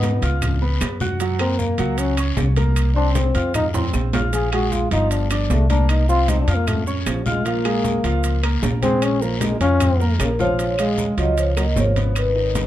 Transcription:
Already playing: G#2 B3 D#4 D#5 D#6
0.03 high conga, high timbale, low timbale, short guiro, maracas
0.22 C#2 F4 F5 F6, high conga, high timbale, short guiro, maracas
0.42 high conga, low conga, high timbale, long guiro, claves, maracas
0.62 B3 B4 B5, high conga
0.81 F#2, high conga, high timbale, low timbale, short guiro, claves, maracas
1.00 F#4 F#5 F#6, high conga, short guiro, maracas
1.20 F#3 F#4 F#5, high conga, high timbale, long guiro, maracas
1.39 A#3 C4 A#4 A#5, high conga, high timbale, claves
1.59 A#3, high conga, low timbale, short guiro, maracas
1.78 C#2 F#3 F#4 F#5, high timbale, short guiro, maracas
1.98 C#4, high conga, high timbale, long guiro, maracas
2.17 C#4 C#5 C#6, high conga, high timbale, claves, maracas
2.37 C2, high conga, low timbale, short guiro, maracas
2.56 A#3 A#4 A#5, high conga, high timbale, short guiro, maracas
2.76 high conga, high timbale, long guiro, claves, maracas
2.96 C4 D4 C5 C6, high conga
3.15 C4, high conga, high timbale, low timbale, short guiro, maracas
3.34 F2 F4 F5 F6, high conga, high timbale, short guiro, maracas
3.54 D#4, high conga, low conga, high timbale, long guiro, claves, maracas
3.74 C4 C5 C6, high conga, low conga, high timbale, maracas
3.93 A#1, high conga, low timbale, short guiro, claves, maracas
4.13 F4 F5 F6, high conga, low timbale, short guiro, maracas
4.33 F3 F4 G#4 F5, high conga, high timbale, long guiro, maracas
4.52 G#3 F#4 G#4 G#5, high conga, high timbale, claves
4.72 F4, high conga, low timbale, short guiro, maracas
4.91 G1 F3 D#4 F4 F5, high conga, high timbale, short guiro, maracas
5.11 D4, high conga, high timbale, long guiro, maracas
5.31 F3 D4 D5 D6, high conga, high timbale, claves, maracas
5.50 C2 A3, high conga, low timbale, short guiro, maracas
5.70 A#3 D4 A#4 A#5, high conga, high timbale, short guiro, maracas
5.89 D#4, high conga, high timbale, long guiro, claves, maracas
6.09 C4 F4 C5 C6, high conga, maracas
6.28 D#4, high conga, high timbale, low timbale, short guiro, maracas
6.42 D4
6.47 F2 F4 F5 F6, high conga, high timbale, short guiro, maracas
6.55 A#3
6.67 A3, high conga, low conga, high timbale, long guiro, claves, maracas
6.87 C#3 C#4 C#5 C#6, high conga, maracas
7.06 A#1 F3, high conga, high timbale, low timbale, short guiro, claves, maracas
7.26 G#3 F4 F5 F6, high conga, short guiro, maracas
7.45 F3 A#3 F4 F5, high conga, high timbale, long guiro, maracas
7.65 G#3 G#4 G#5, high conga, high timbale, claves
7.84 high conga, low timbale, short guiro, maracas
8.04 C#2 F3 F4 F5, high conga, high timbale, short guiro, maracas
8.24 high conga, high timbale, long guiro, maracas
8.43 A#3 A#4 A#5, high conga, high timbale, claves
8.63 A#1, high conga, low timbale, short guiro, maracas
8.82 G#3 C4 G#4 G#5, high conga, high timbale, short guiro, maracas
9.02 C#4, high timbale, long guiro, claves, maracas
9.22 F3 A#3 A#4 A#5, high conga, maracas
9.41 G#3, high conga, high timbale, low timbale, short guiro, maracas
9.60 F2 C#4 F4 F5 F6, high conga, high timbale, short guiro, maracas
9.80 high conga, low conga, high timbale, long guiro, claves, maracas
10.00 A#3 A#4 A#5, high conga, maracas
10.19 A#1 C#3 A#4, high conga, high timbale, low timbale, short guiro, claves, maracas
10.39 F3 F4 C#5 F5 F6, high conga, short guiro, maracas
10.59 F3 F4, high conga, high timbale, long guiro, maracas
10.78 G#3 G#4 F5, high conga, high timbale, claves, maracas
10.98 high conga, low timbale, short guiro, maracas
11.17 C#2 F3 F#3 F4 D#5, high conga, high timbale, short guiro, maracas
11.37 F3 C#5, high conga, high timbale, long guiro, maracas
11.57 F#3 A#3 A#4 D#5, high conga, high timbale, claves, maracas
11.76 G#1 F3 C#5, high conga, low timbale, short guiro, maracas
11.96 B3 B4, high conga, high timbale, short guiro, maracas
12.15 D#3 B4, high conga, high timbale, long guiro, claves, maracas
12.36 D#4 D#5, high conga
12.55 high conga, high timbale, low timbale, short guiro, maracas

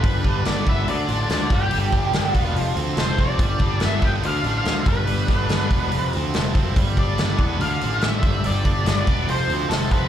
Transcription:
Already playing: B4
0.04 G1 G2 G3, kick, open hi-hat
0.23 G1 G3 D4, kick, open hi-hat
0.44 G1 B3 D4 D5, snare, open hi-hat
0.66 G1 B3 B4 E5, kick, open hi-hat
0.86 D2 D3 D5, open hi-hat
0.90 D3
1.06 A1 F3 D4, open hi-hat
1.21 D5
1.27 D2 A3, snare, open hi-hat
1.32 D3
1.48 G1 G2, kick, open hi-hat
1.53 G3 G4
1.69 G1 G2 G3, open hi-hat
1.92 G1 G3 D4, kick, open hi-hat
2.13 G1 B3 D4, snare, open hi-hat
2.35 E1 B3 F4 B4, kick, open hi-hat
2.54 F1 F2 F3, open hi-hat
2.76 D2 F3 C4, open hi-hat
2.97 F1 A3 C5, snare, open hi-hat
3.18 F1 F3 C4 D5, kick, open hi-hat
3.39 G1 G2 G3, kick, open hi-hat
3.59 G1 G3 D4, kick, open hi-hat
3.80 G1 B3 D4, snare, open hi-hat
3.85 E5
4.02 G1 B3 B4 G5, kick, open hi-hat
4.22 D2 D3 F5, open hi-hat
4.43 A1 F3 D4, open hi-hat
4.58 F5
4.64 D2 D3 A3, snare, open hi-hat
4.85 G1 G2 G3 B4, kick, open hi-hat
5.05 G1 G2, open hi-hat
5.09 G3
5.27 G1 G3 D4, kick, snare, open hi-hat
5.48 G1 D4, snare, open hi-hat
5.52 B3
5.69 E1 B3, kick, open hi-hat
5.73 B4
5.91 F1 F2 F3, open hi-hat
6.13 D2 F3 C4, open hi-hat
6.33 F1 A3, snare, open hi-hat
6.54 F#1 F3 C4, kick, open hi-hat
6.74 G1 G2, kick, open hi-hat
6.79 G3
6.97 G1 G3 D4 D5, kick, open hi-hat
7.18 G1 B3 D4, snare, open hi-hat
7.38 E2 B3 B4, kick, open hi-hat
7.60 D2 D3 F5, open hi-hat
7.81 A1 F3 D4, open hi-hat
8.01 A1 D3 A3 E5, snare, open hi-hat
8.23 G1 G2 G3, kick, open hi-hat
8.44 G1 G2 G3 D5, open hi-hat
8.64 G1 G3 D4, kick, open hi-hat
8.83 G1 B3 D4, snare, open hi-hat
9.06 E1 B3 B4, kick, open hi-hat
9.26 F1 F2 F3 C5, open hi-hat
9.46 D2 F3 C4, open hi-hat
9.69 F1 A3 A4, snare, open hi-hat
9.90 F1 F3 C4 B4, kick, open hi-hat

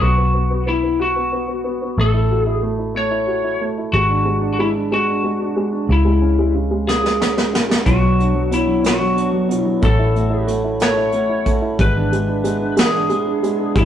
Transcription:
0.01 B1 B3 F#4
0.18 B3
0.34 B3
0.50 B3
0.66 B3 E4
0.83 B3
1.00 F#4
1.16 B3
1.32 B3
1.48 B3
1.64 B3
1.82 B3
1.98 A1 A3 A4
2.14 E4
2.31 F#4
2.43 E4 G#4
2.63 A3
2.79 E4
2.95 A3 C#5
3.11 E4
3.27 F#4
3.44 E4
3.61 A3
3.78 E4
3.93 G#1 G#3 F#4
4.09 D4
4.25 G#3
4.41 D4
4.53 F#4
4.59 G#3 E4
4.75 D4
4.92 G#3 F#4
5.08 D4
5.24 G#3
5.40 D4
5.56 G#3
5.72 D4
5.89 C#2 C#3 E4
6.05 G#3
6.22 C#4
6.39 G#3
6.54 C#3
6.71 G#3
6.87 C#3 G#4, snare
7.03 G#3, snare
7.20 C#4, snare
7.37 G#3, snare
7.54 C#3, snare
7.69 G#3, snare
7.86 B1 B2 F#3 B3 D4 F#4 C#5, kick, closed hi-hat
8.03 F#3
8.19 B3 D4 F#4 C#5, closed hi-hat
8.35 F#3
8.51 B2 B3 D4 E4 F#4 C#5, closed hi-hat
8.67 F#3
8.83 B2 F#3 B3 D4 F#4 C#5, snare, closed hi-hat
9.00 F#3
9.16 B3 D4 F#4, closed hi-hat
9.20 C#5
9.32 F#3
9.48 B2 D4 F#4 C#5, closed hi-hat
9.52 B3
9.58 E4
9.65 F#3
9.82 A1 A2 A3 C#4 E4 F#4 A4, kick, closed hi-hat
9.99 E4
10.15 A3 C#4 E4 F#4, closed hi-hat
10.30 E4
10.47 A3 C#4 E4 F#4, closed hi-hat
10.64 E4
10.80 A2 A3 C#4 E4 F#4 C#5, snare, closed hi-hat
10.97 E4
11.12 A3 C#4 F#4, closed hi-hat
11.17 E4
11.29 E4
11.45 A3 C#4 E4 F#4, kick, closed hi-hat
11.62 E4
11.79 G#1 G#2 E3 G#3 B3 D4 E4 B4, kick, closed hi-hat
11.97 D4
12.11 G#3 B3 D4 E4, closed hi-hat
12.28 D4
12.44 G#3 B3 D4 E4, closed hi-hat
12.61 D4
12.77 G#2 E3 G#3 B3 D4 E4 G#4, snare, closed hi-hat
12.94 D4
13.10 G#3 B3 D4 E4, closed hi-hat
13.26 D4
13.43 G#3 B3 D4 E4, closed hi-hat
13.59 D4
13.76 G#1 G#2 E3 G#3 B3 D4 E4, kick, closed hi-hat

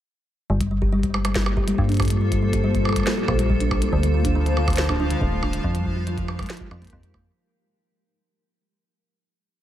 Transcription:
0.50 G1 G3 A#3 F4 A4 C5
0.60 G3, kick, closed hi-hat
0.71 G3
0.82 G4, kick
0.93 G3
1.03 G3, kick, closed hi-hat
1.14 G3, percussion blips
1.25 G3, closed hi-hat, percussion blips
1.35 G3, kick, snare
1.46 G4, percussion blips
1.57 G4, kick
1.68 G3, closed hi-hat
1.78 G2 G3, kick
1.89 D4, closed hi-hat
1.92 closed hi-hat
1.94 closed hi-hat
1.97 G4, closed hi-hat
2.00 kick, closed hi-hat, percussion blips
2.02 kick, closed hi-hat
2.05 kick, closed hi-hat
2.08 G3, closed hi-hat
2.10 kick, closed hi-hat
2.14 kick
2.18 G3, kick
2.32 G3, kick, closed hi-hat
2.43 G3
2.53 G4, kick, closed hi-hat
2.64 G3
2.75 G3, kick, closed hi-hat
2.85 G3, percussion blips
2.89 percussion blips
2.93 G3, kick, closed hi-hat, percussion blips
2.96 percussion blips
3.00 percussion blips
3.03 G3, snare, percussion blips
3.17 G4
3.28 A#1 G4, kick, percussion blips
3.39 G3, closed hi-hat
3.50 G3, kick
3.60 D4, closed hi-hat
3.71 G4, kick, percussion blips
3.82 G3, closed hi-hat
3.92 D2 D3 F3 G3 D4 F4 F5, kick
4.03 D3, closed hi-hat
4.14 D3
4.25 D4, kick, closed hi-hat
4.35 D3
4.46 D3, closed hi-hat
4.57 D3, percussion blips
4.68 D3, kick, closed hi-hat, percussion blips
4.70 closed hi-hat
4.73 closed hi-hat
4.76 D3, snare, closed hi-hat
4.89 D4, kick, percussion blips
4.92 kick
4.94 kick
4.97 kick
5.00 D4, kick
5.02 kick
5.05 kick
5.08 D3, kick, closed hi-hat
5.21 D1 D3, kick
5.32 A3
5.43 D4, kick, percussion blips
5.53 D3, closed hi-hat
5.64 F2 F3 G#3 D#4 G4 A#4, kick
5.75 F3, closed hi-hat
5.86 F3, kick
5.96 F4
6.07 F3, closed hi-hat
6.18 F3, kick, closed hi-hat
6.28 F3, percussion blips
6.39 F3, kick, closed hi-hat, percussion blips
6.43 closed hi-hat
6.46 snare, closed hi-hat
6.50 F3, closed hi-hat
6.53 closed hi-hat
6.57 F4, kick, closed hi-hat
6.71 F2 F3, percussion blips
6.82 A#3, kick, closed hi-hat
6.85 closed hi-hat
6.87 kick, closed hi-hat
6.90 F2 F3, kick, closed hi-hat
6.98 kick
7.03 F3, closed hi-hat
7.14 A#3, kick, percussion blips
7.25 F3

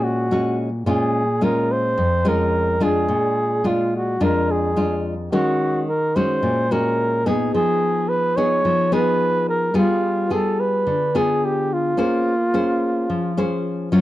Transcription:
Already playing: A#2 G#3 C#4 F#4
0.04 F#4
0.31 G#3 C#4 F#4
0.86 A#2 G#3 C#4 F4 G#4
1.41 G#3 C#4 F4 A#4
1.72 C5
1.98 F2
2.25 G#3 C#4 F4 A#4
2.80 G#3 D4 F4 G#4
3.08 A#2
3.64 G#3 D4 F4
3.97 F#4
4.20 F2 G#3 D4 F4 A#4
4.51 G#4
4.76 G#3 D4 F4
5.32 D#3 G#3 C#4 F#4
5.89 A#4
6.16 G#3 C#4 F#4 C5
6.43 A#2
6.71 G#3 C#4 F#4 A#4
7.26 B3 D#4 G#4
7.55 F3 G#4
8.09 B4
8.37 B3 D#4 G#4 C#5
8.65 F3
8.92 B3 D#4 G#4 B4
9.49 A#4
9.74 G3 B3 F4 G#4
10.30 B3 F4 G#4 A4
10.60 B4
10.87 D3
11.15 B3 F4 G#4
11.45 G4
11.73 F4
11.97 A#3 C#4 G#4 C5
12.54 C#4 G#4 C5
13.10 F3
13.37 C#4 G#4 C5
13.92 F#3 C#4 F4

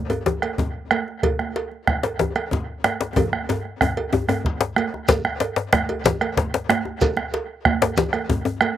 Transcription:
0.10 cowbell, djembe tone, high conga
0.26 bombo rim, djembe slap, high conga, low conga, djembe bass
0.42 bombo rim, cowbell, djembe slap, high conga
0.58 bombo low, djembe slap, djembe tone
0.91 bombo rim, cowbell, high conga
1.08 djembe slap
1.23 bombo low, cowbell, high conga, low conga, djembe bass
1.39 bombo rim, djembe slap, high conga
1.55 cowbell, djembe slap, high conga
1.71 high conga
1.87 bombo rim, bombo low, high conga
2.03 cowbell, djembe slap, high conga, djembe tone
2.19 bombo rim, djembe slap, high conga, low conga, djembe bass
2.36 bombo rim, cowbell, djembe slap, high conga
2.51 bombo low, djembe slap, djembe tone
2.84 bombo rim, cowbell, djembe slap, high conga
3.01 djembe slap, djembe tone
3.16 bombo low, cowbell, djembe tone, low conga, djembe bass
3.32 bombo rim, high conga
3.49 cowbell, djembe slap, djembe tone
3.65 bombo rim, high conga
3.81 bombo rim, bombo low, djembe tone
3.97 bombo rim, cowbell, high conga, djembe tone
4.13 high conga, djembe tone, low conga, djembe bass
4.28 bombo rim, cowbell, high conga, djembe tone
4.45 bombo low, djembe slap
4.61 djembe slap
4.76 bombo rim, cowbell, djembe slap, high conga
4.93 bombo rim, djembe slap, djembe tone
5.08 bombo rim, bombo low, cowbell, djembe slap, high conga, low conga, djembe bass, shekere
5.25 bombo rim, high conga
5.40 cowbell, djembe slap
5.56 djembe slap
5.73 bombo rim, bombo low, djembe slap, high conga
5.89 cowbell, djembe tone
6.04 djembe slap, low conga, djembe bass, shekere
6.21 bombo rim, cowbell, high conga
6.37 bombo low, djembe slap
6.54 djembe slap
6.69 bombo rim, djembe slap, high conga
6.85 djembe slap, djembe tone
7.01 bombo rim, bombo low, cowbell, high conga, low conga, djembe bass, shekere
7.17 bombo rim, high conga
7.34 cowbell, djembe slap
7.65 bombo rim, bombo low, high conga
7.82 cowbell, djembe slap, djembe tone
7.97 djembe slap, low conga, djembe bass, shekere
8.13 bombo rim, cowbell, high conga
8.29 bombo low, djembe slap, djembe tone
8.45 djembe tone
8.61 bombo rim, cowbell, high conga

